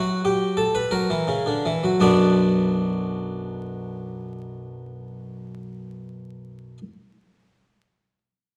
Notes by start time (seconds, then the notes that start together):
Already playing: F#3 F#4
0.25 G4
0.57 A4
0.75 B4
0.91 F#3 A#4
1.10 E3
1.28 C#3
1.46 D3
1.66 E3
1.83 F#3
2.00 B1 F#2 F#3 B3 D4 F#4 D5